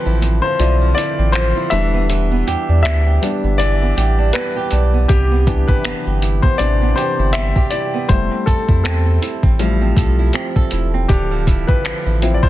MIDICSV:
0, 0, Header, 1, 5, 480
1, 0, Start_track
1, 0, Key_signature, 0, "major"
1, 0, Tempo, 750000
1, 1340, Time_signature, 4, 2, 24, 8
1, 7996, End_track
2, 0, Start_track
2, 0, Title_t, "Grand piano"
2, 0, Program_c, 0, 0
2, 0, Control_c, 0, 64, 127
2, 0, Note_on_c, 0, 53, 55
2, 0, Note_on_c, 0, 60, 51
2, 0, Note_on_c, 0, 64, 58
2, 0, Note_on_c, 0, 67, 85
2, 0, Note_on_c, 0, 71, 107
2, 0, Note_on_c, 0, 72, 70
2, 268, Note_off_c, 0, 72, 0
2, 268, Note_on_c, 0, 72, 95
2, 288, Note_off_c, 0, 71, 0
2, 375, Note_off_c, 0, 53, 0
2, 375, Note_on_c, 0, 53, 46
2, 378, Note_off_c, 0, 60, 0
2, 378, Note_on_c, 0, 60, 45
2, 380, Note_off_c, 0, 64, 0
2, 380, Note_on_c, 0, 64, 54
2, 594, Note_off_c, 0, 53, 0
2, 595, Note_off_c, 0, 60, 0
2, 596, Note_off_c, 0, 64, 0
2, 606, Note_on_c, 0, 74, 91
2, 625, Note_off_c, 0, 72, 0
2, 836, Note_off_c, 0, 74, 0
2, 847, Note_on_c, 0, 72, 94
2, 1076, Note_off_c, 0, 72, 0
2, 1089, Note_on_c, 0, 76, 101
2, 1094, Note_on_c, 0, 55, 54
2, 1097, Note_on_c, 0, 59, 47
2, 1101, Note_on_c, 0, 62, 58
2, 1108, Control_c, 0, 64, 0
2, 1110, Note_off_c, 0, 67, 0
2, 1220, Control_c, 0, 64, 127
2, 1789, Note_off_c, 0, 76, 0
2, 1809, Note_on_c, 0, 76, 96
2, 2049, Note_off_c, 0, 55, 0
2, 2052, Note_off_c, 0, 59, 0
2, 2054, Note_off_c, 0, 62, 0
2, 2059, Note_on_c, 0, 55, 46
2, 2061, Note_on_c, 0, 59, 43
2, 2063, Note_on_c, 0, 62, 51
2, 2275, Note_off_c, 0, 55, 0
2, 2277, Note_off_c, 0, 59, 0
2, 2278, Note_off_c, 0, 62, 0
2, 2291, Note_on_c, 0, 74, 97
2, 2309, Note_off_c, 0, 76, 0
2, 2772, Note_on_c, 0, 71, 89
2, 2790, Note_off_c, 0, 74, 0
2, 3130, Note_off_c, 0, 71, 0
2, 3253, Note_on_c, 0, 67, 90
2, 3269, Control_c, 0, 64, 0
2, 3400, Control_c, 0, 64, 127
2, 3498, Note_on_c, 0, 52, 54
2, 3500, Note_on_c, 0, 59, 49
2, 3504, Note_on_c, 0, 62, 60
2, 3632, Note_on_c, 0, 71, 92
2, 3647, Note_off_c, 0, 67, 0
2, 3833, Note_off_c, 0, 52, 0
2, 3834, Note_off_c, 0, 59, 0
2, 3836, Note_off_c, 0, 62, 0
2, 4111, Note_on_c, 0, 72, 83
2, 4130, Note_off_c, 0, 71, 0
2, 4209, Note_off_c, 0, 72, 0
2, 4211, Note_on_c, 0, 74, 91
2, 4217, Note_on_c, 0, 52, 47
2, 4219, Note_on_c, 0, 59, 41
2, 4222, Note_on_c, 0, 62, 52
2, 4434, Note_off_c, 0, 52, 0
2, 4436, Note_off_c, 0, 59, 0
2, 4437, Note_off_c, 0, 62, 0
2, 4452, Note_on_c, 0, 72, 87
2, 4463, Note_off_c, 0, 74, 0
2, 4690, Note_on_c, 0, 76, 91
2, 4703, Note_off_c, 0, 72, 0
2, 4931, Note_on_c, 0, 74, 83
2, 4942, Note_off_c, 0, 76, 0
2, 5158, Note_off_c, 0, 74, 0
2, 5175, Note_on_c, 0, 72, 86
2, 5177, Note_on_c, 0, 55, 52
2, 5181, Note_on_c, 0, 57, 52
2, 5185, Note_on_c, 0, 64, 62
2, 5188, Control_c, 0, 64, 0
2, 5292, Control_c, 0, 64, 127
2, 5400, Note_off_c, 0, 72, 0
2, 5414, Note_on_c, 0, 69, 81
2, 5469, Note_off_c, 0, 69, 0
2, 5655, Note_on_c, 0, 69, 72
2, 5873, Note_off_c, 0, 55, 0
2, 5875, Note_off_c, 0, 57, 0
2, 5877, Note_off_c, 0, 64, 0
2, 6112, Note_off_c, 0, 69, 0
2, 6140, Note_on_c, 0, 55, 46
2, 6143, Note_on_c, 0, 57, 46
2, 6145, Note_on_c, 0, 64, 50
2, 6356, Note_off_c, 0, 55, 0
2, 6358, Note_off_c, 0, 57, 0
2, 6359, Note_off_c, 0, 64, 0
2, 7094, Note_on_c, 0, 67, 82
2, 7108, Control_c, 0, 64, 0
2, 7212, Control_c, 0, 64, 127
2, 7472, Note_on_c, 0, 71, 89
2, 7488, Note_off_c, 0, 67, 0
2, 7819, Note_on_c, 0, 53, 54
2, 7822, Note_on_c, 0, 60, 48
2, 7825, Note_on_c, 0, 64, 61
2, 7899, Note_on_c, 0, 74, 67
2, 7917, Note_off_c, 0, 71, 0
2, 7953, Note_on_c, 0, 72, 92
2, 7955, Note_off_c, 0, 74, 0
2, 7996, Note_off_c, 0, 53, 0
2, 7996, Note_off_c, 0, 60, 0
2, 7996, Note_off_c, 0, 64, 0
2, 7996, Note_off_c, 0, 72, 0
2, 7996, End_track
3, 0, Start_track
3, 0, Title_t, "Nylon-string guitar"
3, 0, Program_c, 1, 24
3, 0, Note_on_c, 1, 50, 83
3, 0, Note_on_c, 1, 53, 67
3, 0, Note_on_c, 1, 60, 57
3, 0, Note_on_c, 1, 69, 67
3, 37, Note_on_c, 1, 64, 61
3, 131, Note_off_c, 1, 60, 0
3, 139, Note_on_c, 1, 60, 56
3, 269, Note_off_c, 1, 53, 0
3, 277, Note_on_c, 1, 53, 57
3, 378, Note_off_c, 1, 50, 0
3, 381, Note_on_c, 1, 50, 74
3, 511, Note_off_c, 1, 53, 0
3, 518, Note_on_c, 1, 53, 56
3, 617, Note_off_c, 1, 64, 0
3, 620, Note_on_c, 1, 64, 63
3, 752, Note_off_c, 1, 60, 0
3, 760, Note_on_c, 1, 60, 56
3, 854, Note_off_c, 1, 53, 0
3, 861, Note_on_c, 1, 53, 65
3, 998, Note_off_c, 1, 64, 0
3, 1000, Note_on_c, 1, 64, 66
3, 1098, Note_off_c, 1, 53, 0
3, 1101, Note_on_c, 1, 52, 79
3, 1156, Note_off_c, 1, 60, 0
3, 1242, Note_on_c, 1, 59, 56
3, 1261, Note_off_c, 1, 69, 0
3, 1340, Note_off_c, 1, 52, 0
3, 1342, Note_on_c, 1, 52, 76
3, 1361, Note_off_c, 1, 50, 0
3, 1478, Note_off_c, 1, 59, 0
3, 1481, Note_on_c, 1, 59, 54
3, 1583, Note_on_c, 1, 67, 60
3, 1720, Note_off_c, 1, 64, 0
3, 1722, Note_on_c, 1, 62, 56
3, 1821, Note_off_c, 1, 59, 0
3, 1823, Note_on_c, 1, 59, 68
3, 1960, Note_off_c, 1, 67, 0
3, 1962, Note_on_c, 1, 67, 60
3, 2054, Note_off_c, 1, 62, 0
3, 2062, Note_on_c, 1, 62, 57
3, 2199, Note_off_c, 1, 59, 0
3, 2201, Note_on_c, 1, 59, 54
3, 2301, Note_off_c, 1, 52, 0
3, 2303, Note_on_c, 1, 52, 76
3, 2440, Note_off_c, 1, 59, 0
3, 2442, Note_on_c, 1, 59, 54
3, 2539, Note_off_c, 1, 67, 0
3, 2541, Note_on_c, 1, 67, 61
3, 2672, Note_off_c, 1, 62, 0
3, 2679, Note_on_c, 1, 62, 57
3, 2779, Note_off_c, 1, 59, 0
3, 2781, Note_on_c, 1, 59, 67
3, 2919, Note_off_c, 1, 67, 0
3, 2921, Note_on_c, 1, 67, 63
3, 3014, Note_off_c, 1, 62, 0
3, 3022, Note_on_c, 1, 62, 61
3, 3158, Note_off_c, 1, 59, 0
3, 3161, Note_on_c, 1, 59, 59
3, 3261, Note_on_c, 1, 48, 80
3, 3317, Note_off_c, 1, 62, 0
3, 3399, Note_off_c, 1, 59, 0
3, 3401, Note_on_c, 1, 59, 55
3, 3501, Note_off_c, 1, 67, 0
3, 3503, Note_on_c, 1, 67, 60
3, 3642, Note_on_c, 1, 64, 59
3, 3735, Note_off_c, 1, 59, 0
3, 3742, Note_on_c, 1, 59, 67
3, 3874, Note_off_c, 1, 67, 0
3, 3882, Note_on_c, 1, 67, 62
3, 3980, Note_off_c, 1, 64, 0
3, 3983, Note_on_c, 1, 64, 52
3, 4114, Note_off_c, 1, 59, 0
3, 4122, Note_on_c, 1, 59, 58
3, 4215, Note_off_c, 1, 48, 0
3, 4222, Note_on_c, 1, 48, 76
3, 4356, Note_off_c, 1, 59, 0
3, 4364, Note_on_c, 1, 59, 55
3, 4457, Note_off_c, 1, 67, 0
3, 4465, Note_on_c, 1, 67, 62
3, 4543, Note_off_c, 1, 52, 0
3, 4600, Note_off_c, 1, 64, 0
3, 4602, Note_on_c, 1, 64, 58
3, 4694, Note_off_c, 1, 59, 0
3, 4702, Note_on_c, 1, 59, 66
3, 4834, Note_off_c, 1, 67, 0
3, 4842, Note_on_c, 1, 67, 65
3, 4940, Note_off_c, 1, 64, 0
3, 4942, Note_on_c, 1, 64, 57
3, 5073, Note_off_c, 1, 59, 0
3, 5081, Note_on_c, 1, 59, 58
3, 5237, Note_off_c, 1, 48, 0
3, 5237, Note_off_c, 1, 59, 0
3, 5237, Note_off_c, 1, 67, 0
3, 5319, Note_on_c, 1, 60, 54
3, 5421, Note_on_c, 1, 69, 60
3, 5556, Note_off_c, 1, 64, 0
3, 5559, Note_on_c, 1, 64, 58
3, 5657, Note_off_c, 1, 60, 0
3, 5660, Note_on_c, 1, 60, 69
3, 5795, Note_off_c, 1, 69, 0
3, 5797, Note_on_c, 1, 69, 60
3, 5898, Note_off_c, 1, 64, 0
3, 5900, Note_on_c, 1, 64, 54
3, 6036, Note_off_c, 1, 60, 0
3, 6038, Note_on_c, 1, 60, 57
3, 6140, Note_on_c, 1, 53, 79
3, 6277, Note_off_c, 1, 60, 0
3, 6280, Note_on_c, 1, 60, 55
3, 6377, Note_off_c, 1, 69, 0
3, 6380, Note_on_c, 1, 69, 60
3, 6517, Note_off_c, 1, 64, 0
3, 6519, Note_on_c, 1, 64, 60
3, 6616, Note_off_c, 1, 60, 0
3, 6619, Note_on_c, 1, 60, 66
3, 6756, Note_off_c, 1, 69, 0
3, 6759, Note_on_c, 1, 69, 65
3, 6857, Note_off_c, 1, 64, 0
3, 6860, Note_on_c, 1, 64, 59
3, 6998, Note_off_c, 1, 60, 0
3, 7001, Note_on_c, 1, 60, 57
3, 7101, Note_on_c, 1, 50, 81
3, 7238, Note_off_c, 1, 53, 0
3, 7240, Note_on_c, 1, 53, 57
3, 7259, Note_off_c, 1, 64, 0
3, 7341, Note_on_c, 1, 64, 62
3, 7476, Note_off_c, 1, 60, 0
3, 7479, Note_on_c, 1, 60, 58
3, 7572, Note_off_c, 1, 53, 0
3, 7580, Note_on_c, 1, 53, 67
3, 7716, Note_off_c, 1, 64, 0
3, 7719, Note_on_c, 1, 64, 60
3, 7812, Note_off_c, 1, 60, 0
3, 7820, Note_on_c, 1, 60, 53
3, 7950, Note_off_c, 1, 53, 0
3, 7958, Note_on_c, 1, 53, 60
3, 7996, Note_off_c, 1, 50, 0
3, 7996, Note_off_c, 1, 53, 0
3, 7996, Note_off_c, 1, 60, 0
3, 7996, Note_off_c, 1, 64, 0
3, 7996, Note_off_c, 1, 69, 0
3, 7996, End_track
4, 0, Start_track
4, 0, Title_t, "Sub bass"
4, 0, Program_c, 2, 38
4, 37, Note_on_c, 2, 33, 76
4, 258, Note_off_c, 2, 33, 0
4, 378, Note_on_c, 2, 35, 97
4, 599, Note_off_c, 2, 35, 0
4, 759, Note_on_c, 2, 33, 89
4, 979, Note_off_c, 2, 33, 0
4, 1101, Note_on_c, 2, 28, 96
4, 1555, Note_off_c, 2, 28, 0
4, 1582, Note_on_c, 2, 40, 46
4, 1637, Note_off_c, 2, 40, 0
4, 1719, Note_on_c, 2, 40, 86
4, 1812, Note_off_c, 2, 40, 0
4, 1821, Note_on_c, 2, 38, 95
4, 2040, Note_off_c, 2, 38, 0
4, 2198, Note_on_c, 2, 31, 85
4, 2514, Note_off_c, 2, 31, 0
4, 2540, Note_on_c, 2, 33, 89
4, 2760, Note_off_c, 2, 33, 0
4, 3020, Note_on_c, 2, 35, 90
4, 3240, Note_off_c, 2, 35, 0
4, 3260, Note_on_c, 2, 36, 114
4, 3614, Note_off_c, 2, 36, 0
4, 3639, Note_on_c, 2, 31, 45
4, 3679, Note_off_c, 2, 31, 0
4, 3743, Note_on_c, 2, 31, 47
4, 3798, Note_off_c, 2, 31, 0
4, 3881, Note_on_c, 2, 31, 84
4, 4100, Note_off_c, 2, 31, 0
4, 4222, Note_on_c, 2, 33, 92
4, 4441, Note_off_c, 2, 33, 0
4, 4600, Note_on_c, 2, 31, 85
4, 4819, Note_off_c, 2, 31, 0
4, 5180, Note_on_c, 2, 29, 112
4, 5308, Note_off_c, 2, 29, 0
4, 5422, Note_on_c, 2, 41, 43
4, 5477, Note_off_c, 2, 41, 0
4, 5560, Note_on_c, 2, 41, 92
4, 5652, Note_off_c, 2, 41, 0
4, 5661, Note_on_c, 2, 40, 91
4, 5880, Note_off_c, 2, 40, 0
4, 6037, Note_on_c, 2, 33, 85
4, 6353, Note_off_c, 2, 33, 0
4, 6379, Note_on_c, 2, 35, 101
4, 6600, Note_off_c, 2, 35, 0
4, 6861, Note_on_c, 2, 28, 90
4, 7081, Note_off_c, 2, 28, 0
4, 7100, Note_on_c, 2, 26, 109
4, 7454, Note_off_c, 2, 26, 0
4, 7479, Note_on_c, 2, 33, 44
4, 7519, Note_off_c, 2, 33, 0
4, 7579, Note_on_c, 2, 33, 47
4, 7635, Note_off_c, 2, 33, 0
4, 7718, Note_on_c, 2, 33, 93
4, 7938, Note_off_c, 2, 33, 0
4, 7996, End_track
5, 0, Start_track
5, 0, Title_t, "Drums"
5, 143, Note_on_c, 9, 42, 66
5, 207, Note_off_c, 9, 42, 0
5, 381, Note_on_c, 9, 42, 59
5, 445, Note_off_c, 9, 42, 0
5, 626, Note_on_c, 9, 42, 70
5, 690, Note_off_c, 9, 42, 0
5, 853, Note_on_c, 9, 42, 69
5, 867, Note_on_c, 9, 26, 98
5, 917, Note_off_c, 9, 42, 0
5, 931, Note_off_c, 9, 26, 0
5, 1093, Note_on_c, 9, 42, 64
5, 1157, Note_off_c, 9, 42, 0
5, 1342, Note_on_c, 9, 42, 57
5, 1406, Note_off_c, 9, 42, 0
5, 1585, Note_on_c, 9, 42, 58
5, 1649, Note_off_c, 9, 42, 0
5, 1825, Note_on_c, 9, 42, 82
5, 1829, Note_on_c, 9, 26, 108
5, 1889, Note_off_c, 9, 42, 0
5, 1893, Note_off_c, 9, 26, 0
5, 2065, Note_on_c, 9, 42, 68
5, 2129, Note_off_c, 9, 42, 0
5, 2302, Note_on_c, 9, 42, 60
5, 2366, Note_off_c, 9, 42, 0
5, 2546, Note_on_c, 9, 42, 71
5, 2610, Note_off_c, 9, 42, 0
5, 2772, Note_on_c, 9, 42, 69
5, 2786, Note_on_c, 9, 26, 104
5, 2836, Note_off_c, 9, 42, 0
5, 2850, Note_off_c, 9, 26, 0
5, 3012, Note_on_c, 9, 42, 65
5, 3076, Note_off_c, 9, 42, 0
5, 3259, Note_on_c, 9, 42, 59
5, 3260, Note_on_c, 9, 36, 94
5, 3323, Note_off_c, 9, 42, 0
5, 3324, Note_off_c, 9, 36, 0
5, 3502, Note_on_c, 9, 36, 88
5, 3504, Note_on_c, 9, 42, 55
5, 3566, Note_off_c, 9, 36, 0
5, 3568, Note_off_c, 9, 42, 0
5, 3639, Note_on_c, 9, 36, 92
5, 3703, Note_off_c, 9, 36, 0
5, 3741, Note_on_c, 9, 42, 78
5, 3746, Note_on_c, 9, 26, 113
5, 3805, Note_off_c, 9, 42, 0
5, 3810, Note_off_c, 9, 26, 0
5, 3983, Note_on_c, 9, 42, 66
5, 4047, Note_off_c, 9, 42, 0
5, 4116, Note_on_c, 9, 36, 89
5, 4180, Note_off_c, 9, 36, 0
5, 4219, Note_on_c, 9, 42, 60
5, 4283, Note_off_c, 9, 42, 0
5, 4464, Note_on_c, 9, 42, 67
5, 4528, Note_off_c, 9, 42, 0
5, 4690, Note_on_c, 9, 42, 69
5, 4705, Note_on_c, 9, 26, 102
5, 4754, Note_off_c, 9, 42, 0
5, 4769, Note_off_c, 9, 26, 0
5, 4838, Note_on_c, 9, 36, 89
5, 4902, Note_off_c, 9, 36, 0
5, 4931, Note_on_c, 9, 42, 72
5, 4995, Note_off_c, 9, 42, 0
5, 5179, Note_on_c, 9, 42, 58
5, 5180, Note_on_c, 9, 36, 96
5, 5243, Note_off_c, 9, 42, 0
5, 5244, Note_off_c, 9, 36, 0
5, 5422, Note_on_c, 9, 36, 89
5, 5425, Note_on_c, 9, 42, 61
5, 5486, Note_off_c, 9, 36, 0
5, 5489, Note_off_c, 9, 42, 0
5, 5559, Note_on_c, 9, 36, 94
5, 5623, Note_off_c, 9, 36, 0
5, 5664, Note_on_c, 9, 42, 79
5, 5669, Note_on_c, 9, 26, 106
5, 5728, Note_off_c, 9, 42, 0
5, 5733, Note_off_c, 9, 26, 0
5, 5904, Note_on_c, 9, 42, 66
5, 5968, Note_off_c, 9, 42, 0
5, 6036, Note_on_c, 9, 36, 87
5, 6100, Note_off_c, 9, 36, 0
5, 6140, Note_on_c, 9, 42, 59
5, 6204, Note_off_c, 9, 42, 0
5, 6378, Note_on_c, 9, 36, 91
5, 6386, Note_on_c, 9, 42, 68
5, 6442, Note_off_c, 9, 36, 0
5, 6450, Note_off_c, 9, 42, 0
5, 6612, Note_on_c, 9, 42, 70
5, 6627, Note_on_c, 9, 26, 102
5, 6676, Note_off_c, 9, 42, 0
5, 6691, Note_off_c, 9, 26, 0
5, 6759, Note_on_c, 9, 36, 86
5, 6823, Note_off_c, 9, 36, 0
5, 6853, Note_on_c, 9, 42, 71
5, 6917, Note_off_c, 9, 42, 0
5, 7099, Note_on_c, 9, 42, 62
5, 7100, Note_on_c, 9, 36, 96
5, 7163, Note_off_c, 9, 42, 0
5, 7164, Note_off_c, 9, 36, 0
5, 7342, Note_on_c, 9, 36, 91
5, 7345, Note_on_c, 9, 42, 56
5, 7406, Note_off_c, 9, 36, 0
5, 7409, Note_off_c, 9, 42, 0
5, 7479, Note_on_c, 9, 36, 98
5, 7543, Note_off_c, 9, 36, 0
5, 7584, Note_on_c, 9, 42, 83
5, 7588, Note_on_c, 9, 26, 109
5, 7648, Note_off_c, 9, 42, 0
5, 7652, Note_off_c, 9, 26, 0
5, 7823, Note_on_c, 9, 42, 63
5, 7887, Note_off_c, 9, 42, 0
5, 7956, Note_on_c, 9, 36, 93
5, 7996, Note_off_c, 9, 36, 0
5, 7996, End_track
0, 0, End_of_file